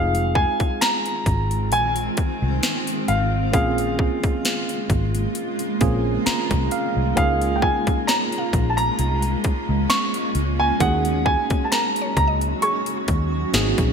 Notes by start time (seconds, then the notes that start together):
Already playing: F1 D#3 G#3 C4 D#4 F4 G#4 F5
0.15 closed hi-hat
0.35 G#5, kick
0.60 muted fingered electric bass stroke, kick, closed hi-hat
0.81 A#5, snare, closed hi-hat
1.06 closed hi-hat
1.26 G#1, kick, closed hi-hat
1.51 closed hi-hat
1.72 A#1 G#5, closed hi-hat
1.96 closed hi-hat
2.17 kick, closed hi-hat
2.42 C2
2.63 snare, closed hi-hat
2.87 closed hi-hat
3.08 G#1 F5, closed hi-hat
3.52 A#1 C#3 A#3 C4 C#4 F4 G#4 F5, kick, closed hi-hat
3.78 closed hi-hat
3.99 kick
4.24 muted fingered electric bass stroke, kick, closed hi-hat
4.45 snare, closed hi-hat
4.69 closed hi-hat
4.90 G#1, kick, closed hi-hat
5.15 closed hi-hat
5.35 closed hi-hat
5.59 closed hi-hat
5.80 A#1 A#3 C4 C#4 F4 G#4, kick, closed hi-hat
6.26 A#5, muted fingered electric bass stroke, snare, closed hi-hat
6.51 C2, kick, closed hi-hat
6.71 F5, closed hi-hat
6.97 C2
7.16 C#2 A#3 C#4 D#4 F4 G#4 F5, kick, closed hi-hat
7.42 closed hi-hat
7.56 G5
7.62 G#5, kick
7.87 muted fingered electric bass stroke, kick, closed hi-hat
8.07 C#5 A#5, snare, closed hi-hat
8.32 closed hi-hat
8.38 F5
8.53 A#1, kick, closed hi-hat
8.70 A5
8.77 A#5, closed hi-hat
8.99 C2, closed hi-hat
9.22 closed hi-hat
9.44 kick, closed hi-hat
9.69 C#2
9.90 C#6, snare, closed hi-hat
10.14 closed hi-hat
10.35 C#2, closed hi-hat
10.60 G#5
10.79 D#2 F#3 A#3 C#4 D#4 F#4 G#4 F#5, kick, closed hi-hat
11.05 closed hi-hat
11.26 G#5, kick
11.50 muted fingered electric bass stroke, kick, closed hi-hat
11.64 A5
11.72 A#4 A#5, snare, closed hi-hat
11.96 closed hi-hat
12.02 C#5
12.17 C#2 A#5, kick, closed hi-hat
12.28 D#5
12.41 closed hi-hat
12.62 G#4 C#6, closed hi-hat
12.86 closed hi-hat
13.08 D#2, kick, closed hi-hat
13.53 G#1 C3 A#3 C4 D#4 F#4 G#4, snare, closed hi-hat
13.78 A#1, kick, closed hi-hat